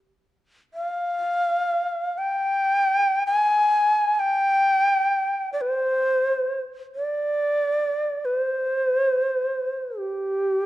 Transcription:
0.74 2.19 F5 medium
2.18 3.26 G5 medium
3.26 4.15 G#5 medium
4.15 4.20 G#5 medium
4.19 5.52 G5 loud
5.53 5.63 D5 medium
5.61 6.63 C5 medium
6.95 8.26 D5 medium
8.25 8.37 B4 medium
8.37 9.99 C5 medium
9.97 10.66 G4 medium

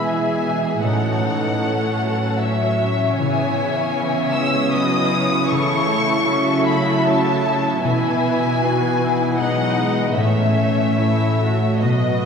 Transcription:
0.00 0.80 B2 soft
0.00 0.88 B2 soft
0.00 3.00 E3 soft
0.00 0.80 G#3 soft
0.00 0.44 E4 soft
0.00 0.81 E5 soft
0.05 0.44 E3 soft
0.05 0.88 B3 soft
0.05 0.82 G#4 soft
0.05 0.82 E5 soft
0.05 0.83 G#5 medium
0.45 0.83 E3 soft
0.45 1.23 E4 soft
0.83 3.19 A2 medium
0.83 3.23 A2 soft
0.83 1.23 F#3 soft
0.83 3.00 C#4 soft
0.83 1.61 D#4 soft
0.83 1.61 A4 soft
0.83 1.61 C#5 soft
0.83 2.38 F#5 medium
1.24 1.63 E3 soft
1.24 2.01 E4 soft
1.62 2.02 A3 soft
1.62 2.40 C#4 soft
1.62 2.30 D#4 soft
1.62 2.39 A4 soft
1.62 2.39 C#5 soft
2.02 3.19 F#3 medium
2.02 2.80 E4 soft
2.40 3.18 C#4 soft
2.40 6.32 C#4 soft
2.40 2.80 C#5 soft
2.40 3.19 E5 medium
2.40 3.19 E5 soft
2.81 3.57 E4 soft
2.81 4.70 C#5 soft
3.17 5.50 C#3 soft
3.17 7.79 C#3 medium
3.17 3.56 E3 medium
3.17 5.45 B3 medium
3.17 5.50 C#4 medium
3.17 7.79 E4 medium
3.17 3.95 E5 soft
3.17 4.31 G#5 medium
3.58 3.95 E3 medium
3.58 4.34 E4 soft
3.96 4.34 E3 medium
3.96 4.62 B3 soft
3.96 4.72 E5 medium
4.33 4.73 G#3 medium
4.33 5.11 E4 soft
4.33 4.72 E6 medium
4.73 5.50 F#3 medium
4.73 5.54 B3 soft
4.73 5.49 B4 soft
4.73 5.12 D#5 medium
4.73 5.48 D#6 medium
5.12 5.89 E4 soft
5.12 5.50 C#5 medium
5.49 7.87 C#3 medium
5.49 5.88 E3 medium
5.49 7.79 A3 medium
5.49 6.27 E4 medium
5.49 6.27 A4 soft
5.49 6.27 C#5 medium
5.49 6.66 C#6 medium
5.90 6.28 A3 medium
5.90 6.66 E4 soft
6.29 7.84 F#3 medium
6.29 6.67 C#4 medium
6.29 7.04 A4 medium
6.29 7.80 E5 medium
6.67 7.43 E4 soft
6.67 7.04 E4 medium
6.67 7.05 B5 medium
7.05 7.87 A3 soft
7.05 7.43 E4 medium
7.05 7.82 A4 soft
7.05 7.83 A5 medium
7.44 8.59 E4 medium
7.44 8.21 E4 soft
7.82 10.20 B2 medium
7.82 10.13 B2 medium
7.82 11.67 E3 medium
7.82 8.22 E3 medium
7.82 10.12 B3 medium
7.82 8.59 B4 medium
7.82 8.60 E5 medium
7.82 9.36 G#5 medium
8.23 9.37 E3 medium
8.23 8.99 E4 soft
8.61 9.28 D#4 soft
8.61 9.00 F#4 medium
8.61 9.36 B4 soft
9.00 9.77 E4 soft
9.00 9.39 E4 medium
9.38 9.78 F#3 medium
9.38 10.20 G#3 soft
9.38 10.17 D#4 medium
9.38 10.15 B4 soft
9.38 10.15 D#5 soft
9.38 10.15 F#5 medium
9.78 10.16 G#3 medium
9.78 10.56 E4 soft
10.16 11.86 A2 soft
10.16 11.79 A2 medium
10.16 11.80 A3 medium
10.16 11.67 C#4 medium
10.16 10.97 C#4 medium
10.16 10.55 C#5 soft
10.16 11.79 E5 medium
10.16 10.98 E5 medium
10.56 11.40 E4 soft
10.56 10.97 C#5 soft
10.98 11.70 C#4 soft
10.98 11.40 E4 medium
10.98 11.81 C#5 soft
11.40 11.87 E4 soft
11.40 11.81 F#4 medium
11.82 12.25 B2 soft
11.82 12.25 F#3 soft
11.82 12.25 A3 soft
11.82 12.25 F#4 soft
11.82 12.25 B4 soft
11.82 12.25 D#5 medium
11.82 12.25 D#5 soft

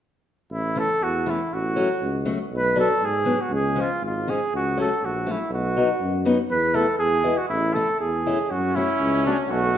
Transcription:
0.50 0.83 A1 medium
0.50 0.80 E4 medium
0.75 0.87 E3 soft
0.75 0.87 A3 soft
0.75 0.87 C#4 medium
0.75 1.05 A4 medium
1.01 1.34 E2 medium
1.01 1.31 F#4 medium
1.26 1.38 E3 soft
1.26 1.38 A3 soft
1.26 1.38 C#4 medium
1.26 1.55 E4 medium
1.52 1.84 A1 medium
1.52 2.28 F#4 medium
1.76 1.88 F#3 soft
1.76 1.88 A3 soft
1.76 1.88 C#4 medium
2.01 2.34 C#2 medium
2.25 2.37 F#3 medium
2.25 2.38 A3 medium
2.25 2.38 C#4 medium
2.51 2.84 B1 medium
2.56 2.77 B4 medium
2.76 2.87 F#3 medium
2.76 2.88 B3 medium
2.76 2.88 D4 medium
2.80 3.06 A4 medium
3.01 3.34 G#2 medium
3.01 3.43 G#4 medium
3.25 3.37 F#3 soft
3.25 3.37 B3 soft
3.25 3.37 D4 soft
3.41 3.52 F#4 medium
3.50 3.83 C#2 medium
3.50 3.82 G#4 medium
3.75 3.87 F3 soft
3.75 3.87 G#3 soft
3.75 3.87 C#4 medium
3.81 4.04 F4 medium
4.01 4.34 G#1 medium
4.05 4.32 F4 medium
4.27 4.39 F3 soft
4.27 4.39 G#3 soft
4.27 4.39 C#4 medium
4.27 4.53 G#4 medium
4.52 4.85 C#2 medium
4.52 4.78 F#4 medium
4.77 4.89 F#3 soft
4.77 4.88 A3 soft
4.77 4.89 C#4 soft
4.77 5.07 A4 medium
5.02 5.34 A#1 medium
5.02 5.33 F#4 medium
5.26 5.38 F#3 soft
5.26 5.38 A3 soft
5.26 5.38 C#4 soft
5.31 5.54 E4 medium
5.50 5.83 B1 medium
5.54 6.23 F#4 medium
5.77 5.88 F#3 soft
5.77 5.88 B3 soft
5.77 5.88 D#4 medium
6.00 6.32 F#2 medium
6.25 6.36 F#3 medium
6.25 6.37 B3 medium
6.25 6.37 D#4 medium
6.50 6.82 E2 medium
6.50 6.76 B4 medium
6.74 6.85 A3 medium
6.74 6.86 B3 soft
6.74 6.86 E4 medium
6.74 6.98 A4 medium
6.99 7.32 E2 medium
6.99 7.39 G#4 medium
7.24 7.36 G#3 soft
7.24 7.36 B3 soft
7.24 7.36 E4 medium
7.37 7.48 F#4 medium
7.49 7.82 A1 medium
7.49 7.76 E4 medium
7.74 7.87 A3 soft
7.74 7.87 C#4 soft
7.74 7.87 E4 medium
7.74 7.99 A4 medium
8.00 8.33 E2 medium
8.00 8.52 G#4 medium
8.27 8.38 A3 soft
8.27 8.38 C#4 soft
8.27 8.38 E4 medium
8.50 8.83 F#2 medium
8.50 9.53 C#4 loud
8.50 8.77 F#4 medium
8.76 8.87 A3 medium
8.76 8.88 C#4 medium
8.76 9.25 E4 medium
8.76 8.88 F#4 medium
9.00 9.33 C#2 medium
9.26 9.37 A3 soft
9.26 9.37 C#4 soft
9.26 9.37 D4 medium
9.26 9.37 F#4 medium
9.49 9.78 B1 medium
9.49 9.78 A3 medium
9.49 9.78 F#4 medium

